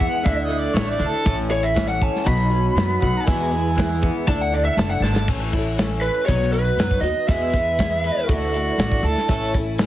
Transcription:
Already playing: E2 E3 G#3 B3 E4 G#4 B4 E5 F#5
0.00 B3, kick
0.08 F#5
0.23 D2 D3 A3 D4 E4 D5 E5, kick, closed hi-hat
0.28 A4
0.44 D#5
0.49 D3 A3 D4 E4
0.59 D5
0.74 A1 D3 A3 D4 E4 C#5, snare, closed hi-hat
0.91 D5
0.99 D2 D3 A3 D4 E4
1.08 A4
1.25 A1 A2 E3 A3 C#4 E4 A4 C#5 E5, kick, closed hi-hat
1.49 A3 C#4 E4 C#5
1.63 E5
1.74 E3 A3 C#4 E4, kick, snare, closed hi-hat
1.89 F#5
2.01 C#4 A5, kick
2.16 snare
2.24 B1 B2 F#3 B3 D#4 F#4 D#5 B5, kick, closed hi-hat
2.28 B4
2.49 F#3 B3 D#4 F#4
2.75 F#2 F#3 B3 D#4 F#4, snare, closed hi-hat
3.00 B1 F#3 B3 D#4 F#4 F#5, kick
3.26 E2 B2 E3 G#3 B3 E4 G#4 B4 E5 G#5, kick, closed hi-hat
3.51 E3 G#3 B3 E4
3.75 E3 G#3 B3 E4, kick, closed hi-hat
3.79 snare
4.02 B3, kick
4.26 D2 D3 A3 D4 E4 A4 D5 E5 A5, kick, closed hi-hat
4.41 F#5
4.52 D3 A3 D4 E4 D5
4.65 E5
4.77 F#1 D3 A3 D4 E4 A5, snare, closed hi-hat
4.90 F#5
5.00 G#1 D3 E4 A5, snare
5.05 A3 D4
5.16 snare
5.28 A1 A2 E3 A3 C#4 E4 A4 C#5 E5, kick, crash
5.53 C#4 E4, kick, closed hi-hat
5.57 A3
5.78 E3 A3 C#4, snare, closed hi-hat
5.82 E4
6.01 B4, closed hi-hat
6.26 B1 B2 F#3 B3 D#4 F#4 B4 C#5 D#5, kick, closed hi-hat
6.42 snare
6.52 B3 D#4 F#4 B4, closed hi-hat
6.77 F#2 F#3 B3, snare, closed hi-hat
6.81 D#4 F#4
6.91 kick
7.01 D#2 F#4 D#5, closed hi-hat
7.06 B3 D#4
7.28 E2 B2 E3 G#3 B3 E4 G#4 B4 E5, kick, closed hi-hat
7.54 E3 G#3 B3 E4, kick, closed hi-hat
7.79 E3 G#3 B3, kick, snare, closed hi-hat
7.83 E4
8.04 B4, closed hi-hat
8.28 D2 D3 A3 D4 E4 F#4 A4 D5 E5, kick, closed hi-hat
8.54 A3 D4 E4, closed hi-hat
8.78 A1 D3 A3 D4, snare, closed hi-hat
8.82 E4
8.92 kick
9.03 D2 A3 D4 E4 A4, closed hi-hat
9.17 snare
9.28 A1 A2 E3 A3 C#4 E4 A4 C#5 E5, kick, closed hi-hat
9.54 A3 C#4 E4, kick, closed hi-hat
9.78 E3 A3 C#4, snare, closed hi-hat
9.83 E4

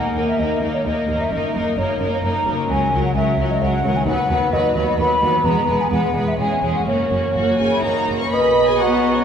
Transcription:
Already playing: D#3 A#3 D#4 A#4 F#5
0.15 D#2 A#3 D#4 A#4
0.28 E5
0.38 D#2 A#3 D#4 A#4 D#5
0.61 D#2 A#3 D#4 A#4
0.74 C#5
0.85 D#2 A#3 D#4 A#4 D#5
1.08 D#2 A#3 D#4 A#4
1.14 F#2
1.18 A#3 E5
1.23 D#4
1.28 F#2 A#3 A#4
1.32 F#1 D#4 A#4 D#5
1.54 F#1 F#2 A#3 D#4 A#4
1.77 F#1 F#2 A#3 D#4 A#4 C#5
1.99 F#1 F#2 A#3 D#4 A#4
2.13 C#5
2.23 F#1 F#2 A#3 D#4 A#4 A#5
2.45 F#1 F#2 A#3 D#4 A#4
2.51 C#3
2.56 C#4
2.60 F#4
2.65 C#2 A#4
2.69 C#2 F#3 C#4 A#4 G#5
2.92 C#2 F#3 C#4 A#4
3.05 F#5
3.14 C#2 F#3 C#4 A#4 E5
3.37 C#2 F#3 C#4 A#4
3.51 D#5
3.60 C#2 F#3 C#4 A#4 F#5
3.83 C#2 F#3 C#4 A#4
3.89 D#3
3.94 B3 G#5
3.98 F#4
4.02 D#2 B4
4.07 D#2 F#3 B3 B4 F#5
4.29 D#2 F#3 B3 B4
4.52 D#2 F#3 B3 B4 D#5
4.75 D#2 F#3 B3 B4
4.88 D#5
4.98 D#2 F#3 B3 B4 B5
5.21 D#2 F#3 B3 B4
5.27 E3
5.32 B3
5.36 G#4
5.41 E2 B4
5.45 E1 G#3 B3 A#5
5.68 E1 E2 G#3 B3 B4
5.81 G#5
5.90 E1 E2 G#3 B3 B4 F#5
6.14 E1 E2 G#3 B3 B4
6.22 E3
6.26 G#3 E5
6.31 G#4
6.35 E2 C#4 C#5
6.39 E1 G#3 G#4 G#5
6.63 E1 E2 G#3 C#4 G#4
6.70 F#2
6.74 A#3 F#5
6.79 F#4
6.83 F#2 C#4 C#5
6.88 F#1 A#3 F#4
7.11 F#1 F#2 A#3 C#4 F#4
7.35 F#1 F#2 A#3 F#4
7.59 F#1 F#2 A#3 F#4 G#4 G#5
7.71 E4
7.83 F#1 F#2 A#3 D#4 F#4 A#4 A#5
8.07 F#1 F#2 A#3 F#4
8.20 C#4 C#5 C#6
8.30 B1 B2 G#3 B4 D#5 B5
8.34 D#5
8.48 F#4
8.64 B3 G#5
8.69 G#4
8.79 B3 F#4 C#5 F#5 A#5
8.96 D#5
9.12 F#4 C#5
9.17 C#4

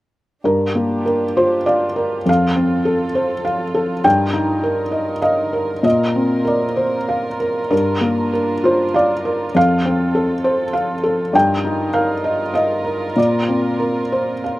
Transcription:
0.44 G2 D4 F4 G4 A#4
0.75 A#3
1.06 A#4
1.37 F4 C5
1.66 D5 F5
1.96 A#4
2.26 F2 C4 A4 F5
2.56 C4
2.85 A4
3.15 C5
3.45 F5
3.74 A4
4.04 G2 D#4 A#4 G5
4.33 D#4
4.63 A#4
4.92 D#5
5.22 D#5 F5
5.53 A#4
5.82 A#2 C4 F4 D#5
6.16 C4
6.45 A#4 D5
6.77 C5
7.09 F5
7.40 A#4
7.71 G2 D4 A#4
8.01 A#3
8.33 A#4
8.64 F4 C5
8.94 D5 F5
9.25 A#4
9.55 F2 C4 A4 F5
9.85 C4
10.15 A4
10.44 C5
10.73 F5
11.03 A4
11.33 G2 D#4 F4 A#4 G5
11.65 D#4
11.94 A#4 F5
12.24 D#5
12.54 D#5 F5
12.84 A#4
13.16 A#2 C4 D5
13.48 C4
13.80 A#4
14.12 C5
14.44 F5

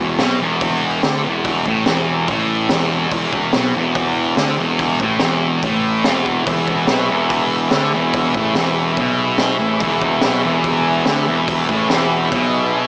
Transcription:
Already playing: E1 E2
0.18 B1 B2, snare, open hi-hat
0.40 E1 E2
0.61 kick, open hi-hat
1.03 D2 D3, snare, open hi-hat
1.23 E1 E2
1.44 kick, open hi-hat
1.66 A1 A2, kick
1.86 E1 E2, snare, open hi-hat
2.28 A1 A2, kick, open hi-hat
2.69 E1 E2, snare, open hi-hat
3.11 E1 E2, kick, open hi-hat
3.33 kick
3.52 B1 B2, snare, open hi-hat
3.72 E1 E2
3.95 kick, open hi-hat
4.36 D2 D3, snare, open hi-hat
4.57 E1 E2
4.79 kick, open hi-hat
5.00 A1 A2, kick
5.19 E1 E2, snare, open hi-hat
5.62 A1 A2, kick, open hi-hat
6.04 E1 E2, snare, open hi-hat
6.26 kick
6.46 E1 E2 G#4 B4 E5, kick, open hi-hat
6.68 kick
6.87 B1 B2, snare, open hi-hat
7.09 E1 E2
7.30 kick, open hi-hat
7.71 D2 D3, snare, open hi-hat
7.93 E1 E2
8.13 kick, open hi-hat
8.34 A1 A2, kick
8.55 E1 E2, snare, open hi-hat
8.97 B1 B2, kick, open hi-hat
9.38 snare, open hi-hat
9.59 A1 A2
9.78 E1 E2 G#4 B4 E5, kick, open hi-hat
10.02 kick
10.22 B1 B2, snare, open hi-hat
10.43 E1 E2
10.64 kick, open hi-hat
11.05 D2 D3, snare, open hi-hat
11.26 E1 E2
11.48 kick, open hi-hat
11.68 A1 A2, kick
11.89 E1 E2, snare, open hi-hat
12.31 B1 B2, kick, open hi-hat
12.74 G#5

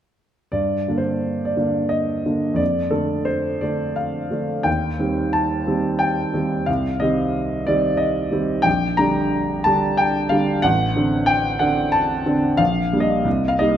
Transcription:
0.52 G2 D5
0.88 D3 A#3 D4
0.98 C5
1.45 D5
1.57 D3 A#3 D4
1.89 D#5
2.26 D3 A#3 D4
2.54 F2 D5
2.91 D3 A3 D4 A4
3.25 C5
3.61 D3 A3 D4 D5
3.96 F5
4.31 D3 A3 D4
4.63 D#2 G5
4.99 D#3 G3 C4
5.33 A5
5.67 D#3 G3 C4
5.99 G5
6.33 D#3 G3 C4
6.66 C2 F5
7.00 D#3 G3 C4 D#5
7.67 D#3 G3 C4 D5
7.97 D#5
8.31 D#3 G3 C4
8.62 A#1 G5
8.97 D3 G3 D4 A#5
9.64 D3 G3 D4 A5
9.97 G5
10.29 D3 G3 D4 F5
10.62 A1 F#5
10.96 D3 C4 D4
11.26 G5
11.59 D3 C4 D4 F#5
11.92 A5
12.26 D3 C4 D4
12.57 A#1 F5
12.93 G3 A#3 D4
13.00 D#5
13.25 C2
13.48 F5
13.59 G3 A#3 D#4 D#5

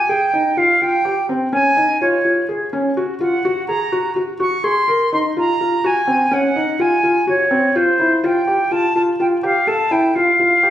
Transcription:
Already playing: G#5
0.09 G#4 G5
0.33 D#4
0.57 F4 F5
0.82 F4 G5
1.05 G4
1.29 C4
1.53 C#4 G#5
1.77 D#4
2.01 F4 C#5
2.25 F4
2.49 G#4
2.73 C#4
2.97 F#4
3.20 F4 F#5
3.45 F#4
3.68 G#4 A#5
3.92 F#4
4.16 F#4
4.40 F#4 C#6
4.64 G#4 C6
4.88 A#4
5.13 D#4 C6
5.37 F4 A#5
5.61 F4
5.84 F#4 G#5
6.07 C4
6.31 C#4 F#5
6.56 D#4
6.79 F4 G#5
7.03 F4
7.27 F#4 C#5
7.51 C4
7.75 F4 C5
7.99 E4
8.24 F4 G5
8.47 G4
8.71 F4 A5
8.95 F4 A5
9.20 F4 G5
9.43 G4 F5
9.67 A4 A5
9.91 E4 G5
10.15 F4 F5
10.40 F4
10.63 G4

